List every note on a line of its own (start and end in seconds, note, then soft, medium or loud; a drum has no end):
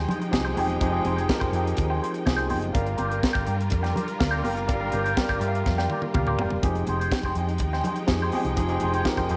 0.00 0.31 F3 loud
0.00 2.71 F3 medium
0.00 2.71 G#3 medium
0.00 0.32 C4 medium
0.00 0.32 D#4 medium
0.00 2.71 D#4 medium
0.00 0.32 G4 medium
0.00 0.33 G#4 medium
0.00 2.71 G5 medium
0.09 0.24 D#4 medium
0.09 0.21 G#4 medium
0.09 0.20 C5 medium
0.09 0.20 G5 medium
0.09 closed hi-hat medium
0.09 low conga medium
0.21 muted clean electric guitar stroke soft
0.21 closed hi-hat soft
0.31 0.53 C2 loud
0.31 0.49 F3 medium
0.31 0.49 C4 medium
0.31 0.49 D#4 medium
0.31 0.49 G4 medium
0.31 0.50 G#4 loud
0.31 muted clean electric guitar stroke soft
0.31 kick loud
0.31 snare loud
0.31 high conga medium
0.45 0.57 D#4 soft
0.45 0.57 G#4 medium
0.45 0.58 C5 soft
0.45 0.58 G5 medium
0.55 0.77 E1 medium
0.55 0.73 F3 medium
0.55 0.73 C4 medium
0.55 0.73 D#4 medium
0.55 0.77 D#4 medium
0.55 0.73 G4 medium
0.55 0.74 G#4 medium
0.55 0.69 G#4 medium
0.55 0.69 C5 medium
0.55 open hi-hat medium
0.55 high conga medium
0.59 0.68 G5 medium
0.69 muted clean electric guitar stroke soft
0.69 closed hi-hat soft
0.80 1.01 F1 medium
0.80 0.89 F3 medium
0.80 0.89 C4 medium
0.80 1.00 D#4 medium
0.80 0.89 D#4 medium
0.80 0.90 G4 medium
0.80 0.90 G#4 medium
0.80 1.01 G#4 medium
0.80 1.01 C5 medium
0.80 1.01 G5 medium
0.80 kick loud
0.80 closed hi-hat medium
0.80 muted conga soft
0.92 1.18 F3 medium
0.92 1.18 C4 medium
0.92 1.18 D#4 medium
0.92 1.19 G4 medium
0.92 1.18 G#4 loud
1.04 1.25 F1 medium
1.04 1.17 D#4 soft
1.04 1.17 G#4 medium
1.04 1.16 C5 medium
1.04 1.15 G5 medium
1.04 closed hi-hat medium
1.04 muted conga soft
1.16 1.28 D#4 soft
1.16 1.28 G#4 medium
1.16 1.29 C5 medium
1.16 1.30 G5 medium
1.16 closed hi-hat medium
1.29 1.46 F3 medium
1.29 1.46 C4 medium
1.29 1.46 D#4 medium
1.29 1.47 G4 medium
1.29 1.47 A#4 medium
1.29 muted clean electric guitar stroke soft
1.29 kick loud
1.29 snare loud
1.29 high conga medium
1.40 1.51 F1 medium
1.40 1.53 D#4 medium
1.40 1.54 G#4 medium
1.40 1.55 C5 medium
1.40 1.55 G5 medium
1.40 kick medium
1.40 closed hi-hat soft
1.52 1.73 F2 loud
1.52 2.05 F3 medium
1.52 2.05 C4 medium
1.52 2.05 D#4 medium
1.52 1.70 D#4 medium
1.52 2.06 G4 medium
1.52 1.67 G#4 medium
1.52 2.06 G#4 medium
1.52 1.66 C5 medium
1.52 1.66 G5 medium
1.52 closed hi-hat medium
1.67 muted clean electric guitar stroke soft
1.67 closed hi-hat soft
1.77 1.99 D#2 medium
1.77 muted clean electric guitar stroke medium
1.77 kick loud
1.77 closed hi-hat medium
1.77 muted conga soft
1.90 2.00 D#4 medium
1.90 2.01 G#4 medium
1.90 2.01 C5 medium
1.90 2.02 G5 medium
2.02 2.18 D#4 medium
2.02 2.13 G#4 medium
2.02 2.13 C5 medium
2.02 2.11 G5 medium
2.02 closed hi-hat medium
2.13 muted clean electric guitar stroke soft
2.13 closed hi-hat soft
2.25 2.53 C2 medium
2.25 2.60 F3 medium
2.25 2.60 C4 medium
2.25 2.60 D#4 medium
2.25 2.61 G4 medium
2.25 2.61 G#4 loud
2.25 muted clean electric guitar stroke soft
2.25 kick loud
2.25 snare medium
2.25 high conga medium
2.36 2.48 D#4 medium
2.36 2.49 G#4 medium
2.36 2.49 C5 medium
2.36 2.50 G5 medium
2.36 closed hi-hat soft
2.49 2.71 F#1 medium
2.49 2.69 D#4 medium
2.49 2.61 G#4 medium
2.49 2.61 C5 medium
2.49 2.60 G5 loud
2.49 open hi-hat medium
2.49 high conga medium
2.61 muted clean electric guitar stroke soft
2.61 closed hi-hat soft
2.73 2.95 G1 loud
2.73 3.42 G3 loud
2.73 6.60 G3 medium
2.73 6.60 D4 medium
2.73 2.93 F4 medium
2.73 6.59 F4 medium
2.73 3.43 G4 medium
2.73 2.94 A#4 medium
2.73 3.43 A#4 medium
2.73 6.60 A#4 medium
2.73 2.94 D5 medium
2.73 3.43 D5 medium
2.73 3.43 F5 loud
2.73 2.94 G5 medium
2.73 kick loud
2.73 closed hi-hat medium
2.73 muted conga soft
2.87 closed hi-hat soft
2.97 3.19 G1 medium
2.97 3.09 F4 medium
2.97 3.09 A#4 medium
2.97 3.09 D5 medium
2.97 3.07 G5 medium
2.97 closed hi-hat medium
2.97 muted conga soft
3.09 3.19 F4 soft
3.09 3.20 A#4 medium
3.09 3.20 D5 medium
3.09 3.21 G5 medium
3.09 closed hi-hat soft
3.23 kick medium
3.23 snare loud
3.23 high conga medium
3.33 3.46 G1 medium
3.33 3.44 F4 medium
3.33 3.45 A#4 medium
3.33 3.45 D5 medium
3.33 3.46 G5 medium
3.33 kick medium
3.33 closed hi-hat soft
3.45 3.68 G2 medium
3.45 3.62 F4 medium
3.45 3.59 A#4 medium
3.45 3.58 D5 medium
3.45 3.58 G5 medium
3.45 closed hi-hat medium
3.59 muted clean electric guitar stroke soft
3.59 closed hi-hat soft
3.70 3.92 F2 medium
3.70 muted clean electric guitar stroke soft
3.70 kick loud
3.70 closed hi-hat medium
3.70 muted conga soft
3.83 3.94 F4 medium
3.83 3.95 A#4 medium
3.83 3.95 D5 medium
3.83 3.96 G5 medium
3.83 snare soft
3.83 closed hi-hat soft
3.95 4.11 F4 medium
3.95 4.06 A#4 medium
3.95 4.06 D5 medium
3.95 4.05 G5 medium
3.95 closed hi-hat medium
3.95 low conga medium
4.06 muted clean electric guitar stroke soft
4.06 closed hi-hat soft
4.18 4.41 D2 medium
4.18 4.37 G3 medium
4.18 4.37 G4 medium
4.18 4.37 A#4 medium
4.18 4.37 D5 medium
4.18 4.37 F5 medium
4.18 muted clean electric guitar stroke soft
4.18 kick loud
4.18 snare medium
4.18 high conga medium
4.31 4.42 F4 medium
4.31 4.43 A#4 medium
4.31 4.43 D5 medium
4.31 4.44 G5 medium
4.31 closed hi-hat soft
4.43 4.69 F#1 medium
4.43 4.61 G3 medium
4.43 4.64 F4 medium
4.43 4.61 G4 medium
4.43 4.61 A#4 medium
4.43 4.55 A#4 medium
4.43 4.61 D5 medium
4.43 4.55 D5 loud
4.43 4.61 F5 medium
4.43 4.55 G5 medium
4.43 open hi-hat medium
4.43 high conga medium
4.56 muted clean electric guitar stroke soft
4.56 closed hi-hat soft
4.67 4.89 G1 medium
4.67 4.77 G3 medium
4.67 4.87 F4 medium
4.67 4.77 G4 medium
4.67 4.88 A#4 medium
4.67 4.77 A#4 medium
4.67 4.88 D5 medium
4.67 4.77 D5 medium
4.67 4.77 F5 medium
4.67 4.88 G5 medium
4.67 kick loud
4.67 closed hi-hat medium
4.67 muted conga soft
4.80 5.06 G3 medium
4.80 5.06 G4 medium
4.80 5.07 A#4 medium
4.80 5.07 D5 medium
4.80 5.07 F5 medium
4.91 5.14 G1 loud
4.91 5.05 F4 medium
4.91 5.04 A#4 medium
4.91 5.04 D5 medium
4.91 5.03 G5 medium
4.91 closed hi-hat medium
4.91 muted conga medium
5.04 5.16 F4 medium
5.04 5.17 A#4 medium
5.04 5.17 D5 medium
5.04 5.17 G5 medium
5.04 closed hi-hat soft
5.17 5.34 G3 medium
5.17 5.35 G4 medium
5.17 5.34 A#4 medium
5.17 5.35 D5 medium
5.17 5.35 G5 loud
5.17 kick loud
5.17 snare loud
5.17 high conga medium
5.29 5.40 G1 medium
5.29 5.39 F4 medium
5.29 5.40 A#4 medium
5.29 5.41 D5 medium
5.29 5.41 G5 medium
5.29 kick medium
5.29 closed hi-hat soft
5.40 5.61 G2 loud
5.40 5.92 G3 medium
5.40 5.57 F4 medium
5.40 5.92 G4 medium
5.40 5.54 A#4 medium
5.40 5.93 A#4 medium
5.40 5.93 D5 medium
5.40 5.53 D5 medium
5.40 5.48 E5 medium
5.40 5.52 G5 medium
5.40 closed hi-hat medium
5.48 5.96 F5 medium
5.54 muted clean electric guitar stroke soft
5.54 closed hi-hat soft
5.66 5.86 F2 medium
5.66 muted clean electric guitar stroke soft
5.66 kick loud
5.66 snare medium
5.78 5.89 F4 medium
5.78 5.90 A#4 medium
5.78 5.90 D5 medium
5.78 5.91 G5 loud
5.78 snare soft
5.90 6.06 F4 medium
5.90 6.03 A#4 medium
5.90 6.03 D5 medium
5.90 6.02 G5 medium
5.90 high tom medium
6.02 muted clean electric guitar stroke medium
6.02 high tom medium
6.14 6.35 D2 medium
6.14 6.48 G3 medium
6.14 6.48 G4 medium
6.14 6.49 A#4 medium
6.14 6.49 D5 medium
6.14 6.49 F5 medium
6.14 muted clean electric guitar stroke soft
6.14 kick loud
6.14 mid tom medium
6.14 high conga medium
6.27 6.39 F4 soft
6.27 6.39 A#4 medium
6.27 6.39 D5 medium
6.27 6.40 G5 medium
6.27 mid tom medium
6.39 6.59 E1 medium
6.39 6.59 F4 medium
6.39 6.52 A#4 medium
6.39 6.51 D5 loud
6.39 6.51 G5 loud
6.39 floor tom loud
6.39 high conga medium
6.50 muted clean electric guitar stroke soft
6.50 floor tom medium
6.62 6.84 F1 medium
6.62 7.31 F3 medium
6.62 9.37 F3 medium
6.62 9.37 G#3 medium
6.62 7.31 C4 medium
6.62 7.31 D#4 medium
6.62 9.37 D#4 medium
6.62 6.83 D#4 medium
6.62 7.31 G4 medium
6.62 7.32 G#4 loud
6.62 6.83 G#4 medium
6.62 6.83 C5 medium
6.62 9.37 G5 medium
6.62 kick loud
6.62 closed hi-hat medium
6.62 muted conga soft
6.66 6.84 G5 medium
6.75 closed hi-hat soft
6.87 7.07 F1 medium
6.87 7.01 D#4 medium
6.87 7.00 G#4 medium
6.87 7.00 C5 medium
6.87 6.99 G5 medium
6.87 closed hi-hat medium
6.87 muted conga soft
7.00 7.12 D#4 soft
7.00 7.13 G#4 medium
7.00 7.13 C5 medium
7.00 7.13 G5 medium
7.00 closed hi-hat medium
7.12 muted clean electric guitar stroke soft
7.12 kick loud
7.12 snare loud
7.12 high conga medium
7.23 7.34 F1 medium
7.23 7.36 D#4 medium
7.23 7.37 G#4 medium
7.23 7.38 C5 medium
7.23 7.38 G5 medium
7.23 kick medium
7.35 7.60 F2 medium
7.35 7.52 D#4 medium
7.35 7.50 G#4 medium
7.35 7.49 C5 medium
7.35 closed hi-hat medium
7.40 7.48 G5 medium
7.49 muted clean electric guitar stroke soft
7.49 closed hi-hat soft
7.58 7.80 D#2 medium
7.58 muted clean electric guitar stroke soft
7.58 kick loud
7.58 closed hi-hat medium
7.73 7.84 D#4 medium
7.73 7.85 G#4 medium
7.73 7.86 C5 medium
7.73 7.86 G5 medium
7.73 snare soft
7.84 8.01 D#4 medium
7.84 7.98 G#4 medium
7.84 7.97 C5 medium
7.84 7.97 G5 medium
7.84 closed hi-hat medium
7.84 low conga medium
7.96 muted clean electric guitar stroke soft
7.96 closed hi-hat soft
8.07 8.29 F2 medium
8.07 8.25 F3 loud
8.07 8.25 C4 medium
8.07 8.25 D#4 medium
8.07 8.25 G4 medium
8.07 8.26 G#4 medium
8.07 muted clean electric guitar stroke soft
8.07 kick loud
8.07 snare loud
8.07 high conga medium
8.22 8.32 D#4 medium
8.22 8.34 G#4 soft
8.22 8.34 C5 medium
8.22 8.34 G5 medium
8.32 8.49 F3 medium
8.32 8.50 C4 medium
8.32 8.50 D#4 medium
8.32 8.53 D#4 medium
8.32 8.50 G4 medium
8.32 8.50 G#4 loud
8.32 8.47 G#4 loud
8.32 8.46 C5 loud
8.32 8.46 G5 loud
8.32 open hi-hat medium
8.32 high conga medium
8.44 8.55 C2 medium
8.44 muted clean electric guitar stroke soft
8.44 closed hi-hat soft
8.56 8.78 F1 loud
8.56 8.65 F3 medium
8.56 8.65 C4 medium
8.56 8.66 D#4 medium
8.56 8.77 D#4 medium
8.56 8.66 G4 medium
8.56 8.66 G#4 medium
8.56 8.78 G#4 medium
8.56 8.78 C5 medium
8.56 8.78 G5 medium
8.56 kick loud
8.56 closed hi-hat medium
8.56 muted conga soft
8.68 8.94 F3 medium
8.68 8.95 C4 medium
8.68 8.95 D#4 medium
8.68 8.95 G4 medium
8.68 8.95 G#4 loud
8.68 closed hi-hat soft
8.80 9.02 F1 loud
8.80 8.95 D#4 medium
8.80 8.94 G#4 medium
8.80 8.94 C5 medium
8.80 closed hi-hat medium
8.80 muted conga soft
8.84 8.93 G5 medium
8.94 9.05 D#4 soft
8.94 9.06 G#4 medium
8.94 9.06 C5 medium
8.94 9.07 G5 medium
8.94 closed hi-hat soft
9.05 9.22 F3 medium
9.05 9.22 C4 medium
9.05 9.23 D#4 medium
9.05 9.23 G4 medium
9.05 9.23 A#4 medium
9.05 muted clean electric guitar stroke soft
9.05 kick medium
9.05 snare loud
9.05 high conga medium
9.17 9.28 F1 medium
9.17 9.28 D#4 medium
9.17 9.30 G#4 medium
9.17 9.30 C5 medium
9.17 9.30 G5 medium
9.17 kick medium
9.17 closed hi-hat soft
9.29 9.37 F2 medium
9.29 9.37 F3 medium
9.29 9.37 C4 medium
9.29 9.37 D#4 medium
9.29 9.37 G4 medium
9.29 9.37 G#4 medium
9.29 9.37 C5 medium
9.29 9.37 G5 medium
9.29 closed hi-hat medium